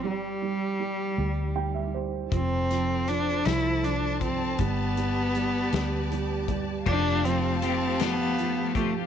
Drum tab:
CC |------|------|------|x-----|
HH |------|xxxxxx|xxxxxx|-xxxxx|
SD |------|-o-o--|---o--|-o-o--|
BD |------|o----o|o----o|o----o|